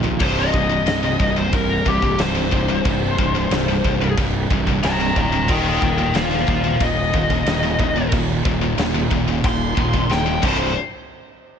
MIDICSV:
0, 0, Header, 1, 6, 480
1, 0, Start_track
1, 0, Key_signature, -3, "minor"
1, 0, Tempo, 659341
1, 152, Time_signature, 4, 2, 24, 8
1, 8438, End_track
2, 0, Start_track
2, 0, Title_t, "Lead electric guitar"
2, 0, Program_c, 0, 29
2, 161, Note_on_c, 0, 72, 103
2, 273, Note_off_c, 0, 72, 0
2, 286, Note_on_c, 0, 75, 127
2, 979, Note_off_c, 0, 75, 0
2, 1005, Note_on_c, 0, 72, 95
2, 1126, Note_off_c, 0, 72, 0
2, 1126, Note_on_c, 0, 70, 102
2, 1353, Note_off_c, 0, 70, 0
2, 1365, Note_on_c, 0, 67, 108
2, 1593, Note_off_c, 0, 67, 0
2, 1604, Note_on_c, 0, 72, 104
2, 3012, Note_off_c, 0, 72, 0
2, 3519, Note_on_c, 0, 79, 93
2, 3528, Note_on_c, 0, 82, 116
2, 3756, Note_off_c, 0, 82, 0
2, 3758, Note_off_c, 0, 79, 0
2, 3771, Note_on_c, 0, 79, 94
2, 3777, Note_on_c, 0, 82, 104
2, 3988, Note_off_c, 0, 79, 0
2, 4000, Note_off_c, 0, 82, 0
2, 4003, Note_on_c, 0, 70, 88
2, 4010, Note_on_c, 0, 79, 107
2, 4224, Note_off_c, 0, 70, 0
2, 4236, Note_off_c, 0, 79, 0
2, 4236, Note_on_c, 0, 70, 84
2, 4245, Note_on_c, 0, 79, 109
2, 4460, Note_off_c, 0, 70, 0
2, 4474, Note_off_c, 0, 79, 0
2, 4479, Note_on_c, 0, 72, 87
2, 4490, Note_on_c, 0, 77, 99
2, 4701, Note_off_c, 0, 72, 0
2, 4716, Note_off_c, 0, 77, 0
2, 4723, Note_on_c, 0, 72, 83
2, 4728, Note_on_c, 0, 77, 89
2, 4943, Note_off_c, 0, 72, 0
2, 4954, Note_off_c, 0, 77, 0
2, 4972, Note_on_c, 0, 75, 123
2, 5895, Note_off_c, 0, 75, 0
2, 6885, Note_on_c, 0, 84, 104
2, 7345, Note_off_c, 0, 84, 0
2, 7364, Note_on_c, 0, 79, 105
2, 7591, Note_off_c, 0, 79, 0
2, 7600, Note_on_c, 0, 72, 109
2, 7829, Note_off_c, 0, 72, 0
2, 8438, End_track
3, 0, Start_track
3, 0, Title_t, "Overdriven electric guitar"
3, 0, Program_c, 1, 29
3, 0, Note_on_c, 1, 39, 71
3, 0, Note_on_c, 1, 46, 81
3, 0, Note_on_c, 1, 51, 82
3, 131, Note_off_c, 1, 39, 0
3, 137, Note_off_c, 1, 46, 0
3, 142, Note_off_c, 1, 51, 0
3, 1349, Note_on_c, 1, 48, 77
3, 1578, Note_off_c, 1, 48, 0
3, 1616, Note_on_c, 1, 48, 93
3, 2072, Note_off_c, 1, 48, 0
3, 2090, Note_on_c, 1, 48, 107
3, 3265, Note_off_c, 1, 48, 0
3, 3274, Note_on_c, 1, 48, 73
3, 3501, Note_off_c, 1, 48, 0
3, 3530, Note_on_c, 1, 48, 92
3, 3989, Note_off_c, 1, 48, 0
3, 5190, Note_on_c, 1, 51, 81
3, 5419, Note_off_c, 1, 51, 0
3, 5448, Note_on_c, 1, 51, 90
3, 5907, Note_off_c, 1, 51, 0
3, 5926, Note_on_c, 1, 51, 115
3, 7096, Note_off_c, 1, 51, 0
3, 7105, Note_on_c, 1, 51, 87
3, 7335, Note_off_c, 1, 51, 0
3, 7366, Note_on_c, 1, 51, 81
3, 7593, Note_off_c, 1, 51, 0
3, 8438, End_track
4, 0, Start_track
4, 0, Title_t, "Distorted electric guitar"
4, 0, Program_c, 2, 30
4, 34, Note_on_c, 2, 46, 79
4, 37, Note_on_c, 2, 39, 66
4, 152, Note_off_c, 2, 39, 0
4, 153, Note_off_c, 2, 46, 0
4, 155, Note_on_c, 2, 36, 85
4, 157, Note_on_c, 2, 43, 91
4, 162, Note_on_c, 2, 48, 87
4, 380, Note_off_c, 2, 36, 0
4, 381, Note_off_c, 2, 43, 0
4, 383, Note_off_c, 2, 48, 0
4, 392, Note_on_c, 2, 43, 92
4, 397, Note_on_c, 2, 36, 77
4, 509, Note_off_c, 2, 43, 0
4, 514, Note_off_c, 2, 36, 0
4, 518, Note_on_c, 2, 43, 93
4, 522, Note_on_c, 2, 36, 72
4, 625, Note_off_c, 2, 36, 0
4, 629, Note_off_c, 2, 43, 0
4, 634, Note_on_c, 2, 36, 79
4, 637, Note_on_c, 2, 43, 81
4, 746, Note_off_c, 2, 43, 0
4, 750, Note_off_c, 2, 36, 0
4, 755, Note_on_c, 2, 43, 103
4, 759, Note_on_c, 2, 36, 70
4, 868, Note_off_c, 2, 43, 0
4, 871, Note_off_c, 2, 36, 0
4, 877, Note_on_c, 2, 43, 82
4, 879, Note_on_c, 2, 36, 76
4, 986, Note_off_c, 2, 43, 0
4, 990, Note_off_c, 2, 36, 0
4, 995, Note_on_c, 2, 43, 75
4, 999, Note_on_c, 2, 36, 74
4, 1104, Note_off_c, 2, 36, 0
4, 1109, Note_off_c, 2, 43, 0
4, 1112, Note_on_c, 2, 36, 84
4, 1118, Note_on_c, 2, 43, 88
4, 1330, Note_off_c, 2, 36, 0
4, 1332, Note_off_c, 2, 43, 0
4, 1355, Note_on_c, 2, 43, 88
4, 1357, Note_on_c, 2, 36, 60
4, 1471, Note_off_c, 2, 43, 0
4, 1474, Note_off_c, 2, 36, 0
4, 1480, Note_on_c, 2, 43, 94
4, 1483, Note_on_c, 2, 36, 77
4, 1591, Note_off_c, 2, 36, 0
4, 1594, Note_off_c, 2, 43, 0
4, 1599, Note_on_c, 2, 36, 87
4, 1602, Note_on_c, 2, 43, 89
4, 1712, Note_off_c, 2, 43, 0
4, 1717, Note_off_c, 2, 36, 0
4, 1720, Note_on_c, 2, 43, 84
4, 1725, Note_on_c, 2, 36, 59
4, 1829, Note_off_c, 2, 43, 0
4, 1832, Note_off_c, 2, 36, 0
4, 1838, Note_on_c, 2, 43, 82
4, 1841, Note_on_c, 2, 36, 71
4, 1953, Note_off_c, 2, 43, 0
4, 1955, Note_off_c, 2, 36, 0
4, 1962, Note_on_c, 2, 43, 98
4, 1964, Note_on_c, 2, 36, 67
4, 2066, Note_off_c, 2, 36, 0
4, 2072, Note_off_c, 2, 43, 0
4, 2075, Note_on_c, 2, 36, 73
4, 2080, Note_on_c, 2, 43, 98
4, 2291, Note_off_c, 2, 36, 0
4, 2294, Note_off_c, 2, 43, 0
4, 2320, Note_on_c, 2, 43, 86
4, 2323, Note_on_c, 2, 36, 69
4, 2438, Note_off_c, 2, 43, 0
4, 2440, Note_off_c, 2, 36, 0
4, 2447, Note_on_c, 2, 43, 91
4, 2448, Note_on_c, 2, 36, 68
4, 2552, Note_off_c, 2, 36, 0
4, 2555, Note_off_c, 2, 43, 0
4, 2561, Note_on_c, 2, 36, 81
4, 2564, Note_on_c, 2, 43, 81
4, 2671, Note_off_c, 2, 43, 0
4, 2675, Note_off_c, 2, 36, 0
4, 2680, Note_on_c, 2, 43, 85
4, 2683, Note_on_c, 2, 36, 73
4, 2789, Note_off_c, 2, 43, 0
4, 2795, Note_off_c, 2, 36, 0
4, 2798, Note_on_c, 2, 43, 87
4, 2804, Note_on_c, 2, 36, 69
4, 2909, Note_off_c, 2, 43, 0
4, 2911, Note_off_c, 2, 36, 0
4, 2918, Note_on_c, 2, 43, 91
4, 2920, Note_on_c, 2, 36, 65
4, 3032, Note_off_c, 2, 36, 0
4, 3035, Note_off_c, 2, 43, 0
4, 3041, Note_on_c, 2, 36, 75
4, 3043, Note_on_c, 2, 43, 88
4, 3255, Note_off_c, 2, 36, 0
4, 3256, Note_off_c, 2, 43, 0
4, 3281, Note_on_c, 2, 43, 85
4, 3284, Note_on_c, 2, 36, 79
4, 3391, Note_off_c, 2, 43, 0
4, 3394, Note_off_c, 2, 36, 0
4, 3400, Note_on_c, 2, 43, 92
4, 3403, Note_on_c, 2, 36, 77
4, 3516, Note_off_c, 2, 36, 0
4, 3518, Note_off_c, 2, 43, 0
4, 3525, Note_on_c, 2, 36, 86
4, 3526, Note_on_c, 2, 43, 98
4, 3633, Note_off_c, 2, 43, 0
4, 3637, Note_off_c, 2, 36, 0
4, 3642, Note_on_c, 2, 43, 87
4, 3646, Note_on_c, 2, 36, 70
4, 3754, Note_off_c, 2, 43, 0
4, 3756, Note_off_c, 2, 36, 0
4, 3762, Note_on_c, 2, 43, 88
4, 3765, Note_on_c, 2, 36, 76
4, 3875, Note_off_c, 2, 43, 0
4, 3877, Note_off_c, 2, 36, 0
4, 3884, Note_on_c, 2, 43, 86
4, 3885, Note_on_c, 2, 36, 79
4, 3996, Note_off_c, 2, 36, 0
4, 3999, Note_on_c, 2, 39, 98
4, 4000, Note_off_c, 2, 43, 0
4, 4004, Note_on_c, 2, 46, 89
4, 4011, Note_on_c, 2, 51, 100
4, 4224, Note_off_c, 2, 39, 0
4, 4226, Note_off_c, 2, 46, 0
4, 4230, Note_off_c, 2, 51, 0
4, 4244, Note_on_c, 2, 39, 68
4, 4244, Note_on_c, 2, 46, 87
4, 4353, Note_off_c, 2, 46, 0
4, 4357, Note_off_c, 2, 39, 0
4, 4362, Note_on_c, 2, 46, 86
4, 4366, Note_on_c, 2, 39, 69
4, 4478, Note_off_c, 2, 39, 0
4, 4479, Note_off_c, 2, 46, 0
4, 4486, Note_on_c, 2, 39, 87
4, 4490, Note_on_c, 2, 46, 88
4, 4591, Note_off_c, 2, 46, 0
4, 4593, Note_off_c, 2, 39, 0
4, 4600, Note_on_c, 2, 46, 85
4, 4602, Note_on_c, 2, 39, 75
4, 4715, Note_off_c, 2, 46, 0
4, 4717, Note_off_c, 2, 39, 0
4, 4724, Note_on_c, 2, 46, 83
4, 4726, Note_on_c, 2, 39, 66
4, 4833, Note_off_c, 2, 46, 0
4, 4836, Note_off_c, 2, 39, 0
4, 4842, Note_on_c, 2, 46, 79
4, 4845, Note_on_c, 2, 39, 67
4, 4953, Note_off_c, 2, 39, 0
4, 4954, Note_off_c, 2, 46, 0
4, 4961, Note_on_c, 2, 39, 67
4, 4963, Note_on_c, 2, 46, 87
4, 5175, Note_off_c, 2, 39, 0
4, 5176, Note_off_c, 2, 46, 0
4, 5199, Note_on_c, 2, 46, 87
4, 5203, Note_on_c, 2, 39, 78
4, 5311, Note_off_c, 2, 46, 0
4, 5315, Note_off_c, 2, 39, 0
4, 5320, Note_on_c, 2, 46, 102
4, 5323, Note_on_c, 2, 39, 78
4, 5431, Note_off_c, 2, 39, 0
4, 5432, Note_off_c, 2, 46, 0
4, 5440, Note_on_c, 2, 39, 84
4, 5441, Note_on_c, 2, 46, 85
4, 5547, Note_off_c, 2, 46, 0
4, 5549, Note_off_c, 2, 39, 0
4, 5555, Note_on_c, 2, 46, 89
4, 5558, Note_on_c, 2, 39, 63
4, 5664, Note_off_c, 2, 46, 0
4, 5669, Note_off_c, 2, 39, 0
4, 5673, Note_on_c, 2, 46, 81
4, 5678, Note_on_c, 2, 39, 80
4, 5787, Note_off_c, 2, 46, 0
4, 5790, Note_off_c, 2, 39, 0
4, 5796, Note_on_c, 2, 46, 89
4, 5799, Note_on_c, 2, 39, 72
4, 5903, Note_off_c, 2, 39, 0
4, 5905, Note_off_c, 2, 46, 0
4, 5912, Note_on_c, 2, 39, 70
4, 5914, Note_on_c, 2, 46, 77
4, 6130, Note_off_c, 2, 39, 0
4, 6131, Note_off_c, 2, 46, 0
4, 6151, Note_on_c, 2, 46, 80
4, 6155, Note_on_c, 2, 39, 70
4, 6267, Note_off_c, 2, 46, 0
4, 6269, Note_off_c, 2, 39, 0
4, 6276, Note_on_c, 2, 46, 81
4, 6277, Note_on_c, 2, 39, 64
4, 6381, Note_off_c, 2, 39, 0
4, 6383, Note_off_c, 2, 46, 0
4, 6390, Note_on_c, 2, 39, 84
4, 6392, Note_on_c, 2, 46, 90
4, 6505, Note_off_c, 2, 46, 0
4, 6506, Note_off_c, 2, 39, 0
4, 6513, Note_on_c, 2, 46, 76
4, 6515, Note_on_c, 2, 39, 70
4, 6618, Note_off_c, 2, 46, 0
4, 6620, Note_off_c, 2, 39, 0
4, 6626, Note_on_c, 2, 46, 83
4, 6629, Note_on_c, 2, 39, 64
4, 6740, Note_off_c, 2, 46, 0
4, 6746, Note_off_c, 2, 39, 0
4, 6749, Note_on_c, 2, 46, 86
4, 6754, Note_on_c, 2, 39, 66
4, 6869, Note_off_c, 2, 39, 0
4, 6872, Note_off_c, 2, 46, 0
4, 6877, Note_on_c, 2, 39, 68
4, 6879, Note_on_c, 2, 46, 78
4, 7092, Note_off_c, 2, 39, 0
4, 7092, Note_off_c, 2, 46, 0
4, 7115, Note_on_c, 2, 46, 76
4, 7117, Note_on_c, 2, 39, 64
4, 7230, Note_off_c, 2, 39, 0
4, 7230, Note_off_c, 2, 46, 0
4, 7239, Note_on_c, 2, 39, 81
4, 7239, Note_on_c, 2, 46, 99
4, 7347, Note_off_c, 2, 39, 0
4, 7351, Note_off_c, 2, 46, 0
4, 7356, Note_on_c, 2, 39, 86
4, 7359, Note_on_c, 2, 46, 86
4, 7466, Note_off_c, 2, 46, 0
4, 7472, Note_off_c, 2, 39, 0
4, 7475, Note_on_c, 2, 46, 77
4, 7481, Note_on_c, 2, 39, 72
4, 7589, Note_off_c, 2, 39, 0
4, 7592, Note_on_c, 2, 36, 94
4, 7594, Note_off_c, 2, 46, 0
4, 7599, Note_on_c, 2, 43, 104
4, 7603, Note_on_c, 2, 48, 113
4, 7784, Note_off_c, 2, 36, 0
4, 7788, Note_off_c, 2, 43, 0
4, 7790, Note_off_c, 2, 48, 0
4, 8438, End_track
5, 0, Start_track
5, 0, Title_t, "Fingered electric bass"
5, 0, Program_c, 3, 33
5, 0, Note_on_c, 3, 34, 91
5, 137, Note_off_c, 3, 34, 0
5, 149, Note_on_c, 3, 24, 109
5, 383, Note_off_c, 3, 24, 0
5, 390, Note_on_c, 3, 24, 101
5, 620, Note_off_c, 3, 24, 0
5, 624, Note_on_c, 3, 24, 90
5, 861, Note_off_c, 3, 24, 0
5, 871, Note_on_c, 3, 24, 106
5, 1105, Note_off_c, 3, 24, 0
5, 1113, Note_on_c, 3, 24, 84
5, 1345, Note_off_c, 3, 24, 0
5, 1351, Note_on_c, 3, 24, 91
5, 1585, Note_off_c, 3, 24, 0
5, 1593, Note_on_c, 3, 24, 104
5, 1826, Note_off_c, 3, 24, 0
5, 1838, Note_on_c, 3, 24, 99
5, 2068, Note_off_c, 3, 24, 0
5, 2076, Note_on_c, 3, 24, 116
5, 2308, Note_off_c, 3, 24, 0
5, 2318, Note_on_c, 3, 24, 100
5, 2549, Note_off_c, 3, 24, 0
5, 2554, Note_on_c, 3, 24, 90
5, 2787, Note_off_c, 3, 24, 0
5, 2797, Note_on_c, 3, 24, 107
5, 3028, Note_off_c, 3, 24, 0
5, 3040, Note_on_c, 3, 24, 84
5, 3270, Note_off_c, 3, 24, 0
5, 3278, Note_on_c, 3, 24, 90
5, 3509, Note_off_c, 3, 24, 0
5, 3519, Note_on_c, 3, 24, 97
5, 3750, Note_off_c, 3, 24, 0
5, 3759, Note_on_c, 3, 26, 88
5, 3995, Note_off_c, 3, 26, 0
5, 3995, Note_on_c, 3, 27, 118
5, 4228, Note_off_c, 3, 27, 0
5, 4239, Note_on_c, 3, 27, 88
5, 4469, Note_off_c, 3, 27, 0
5, 4482, Note_on_c, 3, 27, 93
5, 4711, Note_off_c, 3, 27, 0
5, 4717, Note_on_c, 3, 27, 109
5, 4948, Note_off_c, 3, 27, 0
5, 4953, Note_on_c, 3, 27, 95
5, 5186, Note_off_c, 3, 27, 0
5, 5197, Note_on_c, 3, 27, 88
5, 5428, Note_off_c, 3, 27, 0
5, 5432, Note_on_c, 3, 27, 102
5, 5666, Note_off_c, 3, 27, 0
5, 5674, Note_on_c, 3, 27, 108
5, 5906, Note_off_c, 3, 27, 0
5, 5914, Note_on_c, 3, 27, 100
5, 6146, Note_off_c, 3, 27, 0
5, 6153, Note_on_c, 3, 27, 86
5, 6383, Note_off_c, 3, 27, 0
5, 6388, Note_on_c, 3, 27, 98
5, 6623, Note_off_c, 3, 27, 0
5, 6632, Note_on_c, 3, 27, 91
5, 6865, Note_off_c, 3, 27, 0
5, 6874, Note_on_c, 3, 27, 84
5, 7105, Note_off_c, 3, 27, 0
5, 7112, Note_on_c, 3, 27, 85
5, 7344, Note_off_c, 3, 27, 0
5, 7349, Note_on_c, 3, 27, 91
5, 7583, Note_off_c, 3, 27, 0
5, 7594, Note_on_c, 3, 24, 98
5, 7816, Note_off_c, 3, 24, 0
5, 8438, End_track
6, 0, Start_track
6, 0, Title_t, "Drums"
6, 29, Note_on_c, 9, 43, 92
6, 102, Note_off_c, 9, 43, 0
6, 145, Note_on_c, 9, 49, 61
6, 149, Note_on_c, 9, 36, 124
6, 218, Note_off_c, 9, 49, 0
6, 222, Note_off_c, 9, 36, 0
6, 391, Note_on_c, 9, 36, 89
6, 464, Note_off_c, 9, 36, 0
6, 631, Note_on_c, 9, 49, 69
6, 639, Note_on_c, 9, 38, 120
6, 703, Note_off_c, 9, 49, 0
6, 712, Note_off_c, 9, 38, 0
6, 872, Note_on_c, 9, 36, 97
6, 945, Note_off_c, 9, 36, 0
6, 1113, Note_on_c, 9, 36, 125
6, 1113, Note_on_c, 9, 49, 60
6, 1185, Note_off_c, 9, 49, 0
6, 1186, Note_off_c, 9, 36, 0
6, 1354, Note_on_c, 9, 36, 96
6, 1427, Note_off_c, 9, 36, 0
6, 1473, Note_on_c, 9, 36, 79
6, 1546, Note_off_c, 9, 36, 0
6, 1592, Note_on_c, 9, 49, 70
6, 1601, Note_on_c, 9, 38, 108
6, 1665, Note_off_c, 9, 49, 0
6, 1674, Note_off_c, 9, 38, 0
6, 1837, Note_on_c, 9, 36, 88
6, 1910, Note_off_c, 9, 36, 0
6, 2077, Note_on_c, 9, 36, 115
6, 2077, Note_on_c, 9, 49, 68
6, 2149, Note_off_c, 9, 49, 0
6, 2150, Note_off_c, 9, 36, 0
6, 2319, Note_on_c, 9, 36, 90
6, 2391, Note_off_c, 9, 36, 0
6, 2557, Note_on_c, 9, 49, 70
6, 2566, Note_on_c, 9, 38, 126
6, 2630, Note_off_c, 9, 49, 0
6, 2639, Note_off_c, 9, 38, 0
6, 2799, Note_on_c, 9, 36, 85
6, 2872, Note_off_c, 9, 36, 0
6, 3039, Note_on_c, 9, 36, 113
6, 3039, Note_on_c, 9, 49, 63
6, 3112, Note_off_c, 9, 36, 0
6, 3112, Note_off_c, 9, 49, 0
6, 3280, Note_on_c, 9, 36, 99
6, 3352, Note_off_c, 9, 36, 0
6, 3399, Note_on_c, 9, 36, 72
6, 3472, Note_off_c, 9, 36, 0
6, 3518, Note_on_c, 9, 49, 60
6, 3527, Note_on_c, 9, 38, 99
6, 3591, Note_off_c, 9, 49, 0
6, 3600, Note_off_c, 9, 38, 0
6, 3758, Note_on_c, 9, 36, 90
6, 3831, Note_off_c, 9, 36, 0
6, 3991, Note_on_c, 9, 49, 69
6, 3998, Note_on_c, 9, 36, 125
6, 4063, Note_off_c, 9, 49, 0
6, 4071, Note_off_c, 9, 36, 0
6, 4237, Note_on_c, 9, 36, 95
6, 4310, Note_off_c, 9, 36, 0
6, 4476, Note_on_c, 9, 49, 60
6, 4485, Note_on_c, 9, 38, 109
6, 4549, Note_off_c, 9, 49, 0
6, 4558, Note_off_c, 9, 38, 0
6, 4717, Note_on_c, 9, 36, 88
6, 4790, Note_off_c, 9, 36, 0
6, 4952, Note_on_c, 9, 49, 66
6, 4956, Note_on_c, 9, 36, 113
6, 5025, Note_off_c, 9, 49, 0
6, 5029, Note_off_c, 9, 36, 0
6, 5196, Note_on_c, 9, 36, 92
6, 5269, Note_off_c, 9, 36, 0
6, 5315, Note_on_c, 9, 36, 69
6, 5388, Note_off_c, 9, 36, 0
6, 5434, Note_on_c, 9, 49, 65
6, 5443, Note_on_c, 9, 38, 115
6, 5507, Note_off_c, 9, 49, 0
6, 5516, Note_off_c, 9, 38, 0
6, 5674, Note_on_c, 9, 36, 95
6, 5747, Note_off_c, 9, 36, 0
6, 5910, Note_on_c, 9, 49, 79
6, 5913, Note_on_c, 9, 36, 126
6, 5982, Note_off_c, 9, 49, 0
6, 5986, Note_off_c, 9, 36, 0
6, 6154, Note_on_c, 9, 36, 99
6, 6227, Note_off_c, 9, 36, 0
6, 6394, Note_on_c, 9, 49, 64
6, 6402, Note_on_c, 9, 38, 117
6, 6466, Note_off_c, 9, 49, 0
6, 6475, Note_off_c, 9, 38, 0
6, 6633, Note_on_c, 9, 36, 94
6, 6706, Note_off_c, 9, 36, 0
6, 6873, Note_on_c, 9, 36, 114
6, 6876, Note_on_c, 9, 49, 61
6, 6946, Note_off_c, 9, 36, 0
6, 6948, Note_off_c, 9, 49, 0
6, 7114, Note_on_c, 9, 36, 96
6, 7187, Note_off_c, 9, 36, 0
6, 7234, Note_on_c, 9, 36, 73
6, 7307, Note_off_c, 9, 36, 0
6, 7363, Note_on_c, 9, 38, 60
6, 7436, Note_off_c, 9, 38, 0
6, 7593, Note_on_c, 9, 36, 117
6, 7593, Note_on_c, 9, 57, 98
6, 7666, Note_off_c, 9, 36, 0
6, 7666, Note_off_c, 9, 57, 0
6, 8438, End_track
0, 0, End_of_file